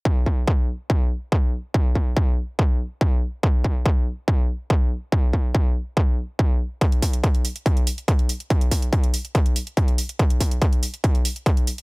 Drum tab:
HH |----------------|----------------|----------------|----------------|
BD |o-o-o---o---o---|o-o-o---o---o---|o-o-o---o---o---|o-o-o---o---o---|

HH |xxoxxxoxxxoxxxox|xxoxxxoxxxoxxxox|xxoxxxoxxxoxxxox|
BD |o-o-o---o---o---|o-o-o---o---o---|o-o-o---o---o---|